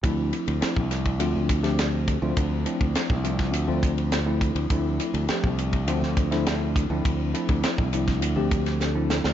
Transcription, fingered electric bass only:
X:1
M:4/4
L:1/16
Q:1/4=103
K:Dm
V:1 name="Fingered electric bass" clef=bass
D,,2 z D,, z C,,3 D,, D,,6 D,, | D,,2 z D,, z C,,3 D,, D,,6 D,, | D,,2 z D,, z C,,3 D,, D,,6 D,, | D,,2 z D,, z C,,3 D,, D,,6 D,, |]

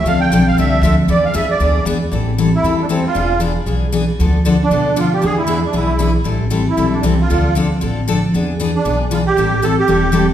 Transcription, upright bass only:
X:1
M:4/4
L:1/8
Q:"Swing" 1/4=232
K:Am
V:1 name="Upright bass" clef=bass
D,,2 B,,,2 C,,2 D,,2 | E,,2 F,,2 D,,2 E,,2 | A,,,4 E,,4 | E,,,4 B,,,4 |
D,,4 B,,4 | E,,4 B,,,4 | A,,,4 B,,,2 C,,2 | D,,4 A,,,4 |
E,,4 B,,,4 | A,,,4 E,,,4 |]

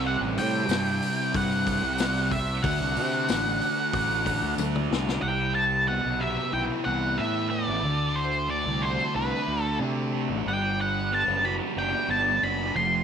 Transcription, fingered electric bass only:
X:1
M:4/4
L:1/16
Q:1/4=92
K:Clyd
V:1 name="Fingered electric bass" clef=bass
C,, A,,, A,,2 G,,2 z2 G,,3 C,,4- C,, | D,, C,, C,2 A,,,2 z2 A,,,3 D,, D,,2 C,,2 | C,,4- C,, B,,,2 z B,,, z C,,2 A,,3 A,,, | D,,4- D,, C,,2 z C,, z D,,2 C,3 A,,, |
G,,,4- G,,, F,,,2 z F,,, z G,,,2 F,,,2 =F,,,2 |]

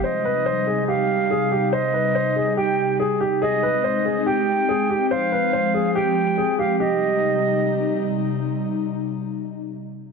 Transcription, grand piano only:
X:1
M:4/4
L:1/8
Q:1/4=142
K:Cm
V:1 name="Grand piano"
c =B c A G2 A G | c =B c A G2 A G | A =B c A G2 A G | c =B c A G2 A G |
G6 z2 | z8 |]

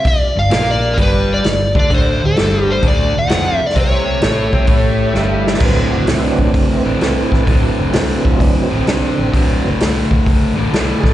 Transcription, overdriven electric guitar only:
X:1
M:4/4
L:1/8
Q:"Swing" 1/4=129
K:Dmix
V:1 name="Overdriven electric guitar" clef=bass
z G,, [_B,,_B,]2 [G,,G,]2 G,, [D,D] | [D,,D,] D,, [G,,G,]2 [D,,D,] D,, [=F,,=F,] z | [C,C]2 [A,,A,] [C,C] [A,,A,]2 [G,,G,]2 | [D,,A,,D,]4- [D,,A,,D,] [D,,A,,D,] [D,,A,,D,]2 |
[D,,A,,D,]4- [D,,A,,D,] [D,,A,,D,] [D,,A,,D,]2 | [D,,A,,D,]4- [D,,A,,D,] [D,,A,,D,] [D,,A,,D,]2 |]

